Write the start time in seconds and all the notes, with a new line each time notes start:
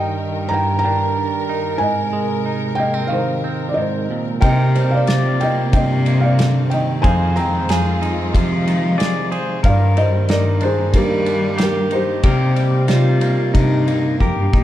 Already playing: G2 D#3 G3 D#4 A#4 D#5 G5
0.49 G2 A#5
0.53 G5
0.79 A#5
0.84 D4 G5
1.49 D#4
1.78 G#2 C3 G#3 G#5
1.83 D#5
2.13 G#3
2.46 D#4
2.75 A#3 G5
2.80 D#5
2.94 C4
3.07 D#3 F5
3.12 C5
3.44 C4
3.69 D5
3.74 G#2 D#5
3.79 C5
4.11 A#2
4.41 C3 A#3 C4 D#4 A#4 D#5 G5, kick, ride
4.75 G3 C4, ride
4.91 D5 F5
4.97 D#4
5.07 C3 D5, snare, ride
5.18 F4
5.40 A#3 D#5 G5, ride
5.73 G2 C3 D#5 G5, kick, ride
6.06 A#3, ride
6.20 D5 F5
6.39 D3, snare, ride
6.70 D#3 G5, ride
6.74 D#5
7.02 F2 D#3 F3 G#3 C4 D#4 F4 G#4 C5 F5 G#5, kick, ride
7.36 C4 G5 A#5, ride
7.69 F2 G#4 F5 G#5, snare, ride
8.02 D#4, ride
8.33 C3 F3, kick, ride
8.67 D#4, ride
8.98 G#4 D5, snare, ride
9.31 G#4 C5, ride
9.63 G2 D#3 A#3 A#4 D5 F5, kick, ride
9.97 G3 C5 D#5, ride
10.29 G2 D#4 A#4 D5, snare, ride
10.61 D4 C5, ride
10.65 G#4
10.94 G2 G3 A#3 G4 A#4, kick, ride
11.26 D4, ride
11.58 G4, snare, ride
11.62 G4 A#4
11.91 D#4 C5, ride
11.95 G4
12.23 C3 G3 A#3 C4 D#4 G4 A#4, kick, ride
12.55 G3, ride
12.88 C3 G3 D#4 F4, snare, ride
13.21 A#3, ride
13.54 G2 C3 D#4, kick, ride
13.87 A#3, ride
14.20 F2 G4 A#4, kick
14.37 G2
14.53 A#2 D#4, kick